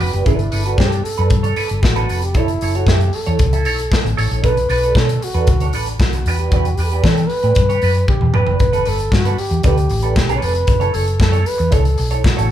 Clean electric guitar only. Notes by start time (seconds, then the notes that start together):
0.00 D4 G4 B4
0.13 D4 G4 B4
0.26 D4 A4 B4
0.40 muted clean electric guitar stroke
0.51 D4 A4 B4
0.66 D4 A4 B4
0.78 D4 A4 C#5
0.92 muted clean electric guitar stroke
1.05 muted clean electric guitar stroke
1.18 D4 A4 B4
1.31 muted clean electric guitar stroke
1.43 D4 A4 C#5
1.56 D4 A4 B4
1.69 muted clean electric guitar stroke
1.83 muted clean electric guitar stroke
1.96 D4 A4 B4
2.10 D4 A4 B4
2.22 muted clean electric guitar stroke
2.35 E4 A4 C#5
2.50 muted clean electric guitar stroke
2.62 E4 A4 C#5
2.75 E4 A4 C#5
2.88 E4 A4 E5
3.01 muted clean electric guitar stroke
3.14 muted clean electric guitar stroke
3.27 E4 A4 C#5
3.40 muted clean electric guitar stroke
3.53 E4 A4 E5
3.65 E4 A4 C#5
3.79 muted clean electric guitar stroke
3.91 muted clean electric guitar stroke
4.04 muted clean electric guitar stroke
4.17 E4 A4 C#5
4.30 E4 A4 C#5
4.42 D4 A4 B4
4.57 muted clean electric guitar stroke
4.69 D4 A4 B4
4.83 D4 A4 B4
4.96 D4 A4 C#5
5.08 muted clean electric guitar stroke
5.21 muted clean electric guitar stroke
5.34 D4 A4 B4
5.48 muted clean electric guitar stroke
5.61 D4 A4 C#5
5.73 D4 A4 B4
5.87 muted clean electric guitar stroke
6.00 muted clean electric guitar stroke
6.15 muted clean electric guitar stroke
6.28 D4 G4 B4
6.39 D4 G4 B4
6.52 D4 G4 B4
6.67 muted clean electric guitar stroke
6.79 D4 G4 B4
6.92 D4 G4 B4
7.05 D4 G4 C#5
7.19 muted clean electric guitar stroke
7.31 muted clean electric guitar stroke
7.43 D4 G4 B4
7.57 muted clean electric guitar stroke
7.69 D4 G4 C#5
7.83 D4 G4 B4
7.95 muted clean electric guitar stroke
8.09 muted clean electric guitar stroke
8.22 muted clean electric guitar stroke
8.34 D4 G4 B4
8.47 D4 G4 B4
8.60 muted clean electric guitar stroke
8.73 D4 A4 B4
8.86 D4 A4 B4
9.00 muted clean electric guitar stroke
9.12 muted clean electric guitar stroke
9.25 D4 A4 B4
9.38 muted clean electric guitar stroke
9.51 muted clean electric guitar stroke
9.64 D4 A4 B4
9.77 muted clean electric guitar stroke
9.90 muted clean electric guitar stroke
10.03 D4 A4 B4
10.16 muted clean electric guitar stroke
10.29 D4 A4 B4
10.42 D4 A4 B4
10.55 muted clean electric guitar stroke
10.68 muted clean electric guitar stroke
10.80 E4 A4 C#5
10.93 E4 A4 C#5
11.07 muted clean electric guitar stroke
11.20 muted clean electric guitar stroke
11.32 E4 A4 C#5
11.45 muted clean electric guitar stroke
11.58 muted clean electric guitar stroke
11.71 E4 A4 C#5
11.85 muted clean electric guitar stroke
11.98 muted clean electric guitar stroke
12.11 E4 A4 C#5
12.24 muted clean electric guitar stroke
12.37 E4 A4 C#5